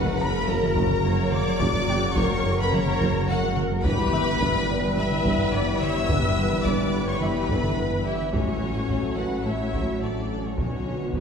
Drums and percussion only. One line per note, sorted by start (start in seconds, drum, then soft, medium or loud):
0.48 taiko mid medium
0.62 taiko mid medium
0.76 taiko medium
0.90 taiko mid medium
1.32 taiko mid medium
1.60 taiko loud
1.88 taiko mid medium
2.02 taiko mid medium
2.16 taiko medium
2.72 taiko mid medium
2.86 taiko mid soft
3.00 taiko medium
3.15 taiko mid medium
3.56 taiko mid medium
3.84 taiko loud
4.13 taiko mid medium
4.27 taiko mid medium
4.41 taiko medium
4.97 taiko mid medium
5.11 taiko mid medium
5.25 taiko medium
5.39 taiko mid medium
5.81 taiko mid medium
6.09 taiko loud
6.37 taiko mid medium
6.51 taiko mid medium
6.65 taiko medium
7.21 taiko mid medium
7.35 taiko mid soft
7.49 taiko medium
7.63 taiko mid soft
8.05 taiko mid medium
8.33 taiko medium
8.89 taiko medium
9.73 taiko medium
10.57 taiko medium
11.13 taiko medium